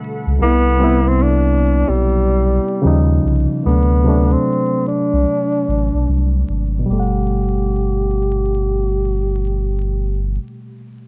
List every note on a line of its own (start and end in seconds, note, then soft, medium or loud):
0.00 0.36 A4 medium
0.00 0.36 F#5 medium
0.00 0.36 B5 medium
0.27 0.39 C#2 medium
0.38 1.84 C2 loud
0.38 0.76 C3 medium
0.38 0.77 G3 medium
0.38 0.78 B3 medium
0.38 1.10 B3 loud
0.44 0.79 E4 medium
0.79 2.28 G3 medium
0.79 2.29 B3 medium
0.79 2.27 C4 medium
0.84 2.30 E4 medium
1.08 1.24 C4 medium
1.23 1.90 D4 loud
1.89 2.59 B1 medium
1.89 3.24 G3 medium
2.82 3.20 D#2 medium
2.82 3.56 C#3 loud
2.82 3.57 F3 medium
2.82 3.58 G3 medium
2.87 3.59 D#4 loud
3.25 3.47 C2 medium
3.63 4.36 D2 medium
3.63 4.01 C3 medium
3.63 4.01 F#3 medium
3.63 4.02 A3 medium
3.63 4.34 B3 medium
3.68 4.03 D4 medium
4.04 5.52 C3 medium
4.04 5.53 F#3 medium
4.04 5.54 A3 medium
4.09 5.55 D4 medium
4.33 4.87 C4 medium
4.88 6.45 D4 loud
5.13 5.26 C2 medium
5.68 5.90 A1 medium
5.94 6.06 B1 medium
6.09 6.44 C2 medium
6.49 6.84 G#1 medium
6.79 10.27 B2 medium
6.86 10.34 G3 medium
6.90 10.38 G1 loud
6.90 10.41 A3 medium
6.90 10.39 G4 medium
6.99 10.48 F#5 medium